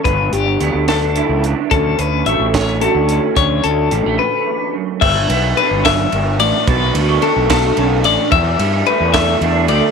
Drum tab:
CC |------|------|------|x-----|
RD |------|------|------|-xxxxx|
HH |xxxxxx|xxxxxx|xxx---|------|
SD |---o--|---o--|------|---o--|
BD |o-----|o--o--|o-----|o--o--|

CC |------|------|
RD |xxxxxx|xxxxxx|
HH |------|------|
SD |---o--|---o--|
BD |o--o--|o--o--|